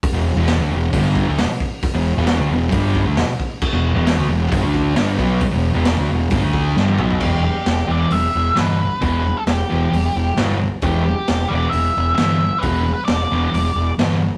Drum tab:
CC |----------------|----------------|x---------------|----------------|
HH |o---o---o---o---|o---o---o---o---|----o---o---o---|o---o---o-------|
SD |----o-------o---|----o-------o---|----o-------o---|----o-------o---|
T1 |----------------|----------------|----------------|-------------o--|
T2 |----------------|----------------|----------------|--------------o-|
FT |----------------|----------------|----------------|---------------o|
BD |o-------o-o---o-|o-------o-o---o-|o-------o-o---o-|o-------o-o-----|

CC |x---------------|----------------|----------------|----------------|
HH |----o---o---o---|o---o---o---o---|o---o---o---o---|o---o---o---o---|
SD |----o-------o---|----o-------o---|----o-------o---|----o-------o---|
T1 |----------------|----------------|----------------|----------------|
T2 |----------------|----------------|----------------|----------------|
FT |----------------|----------------|----------------|----------------|
BD |o---------------|o---------------|o---------------|o---------------|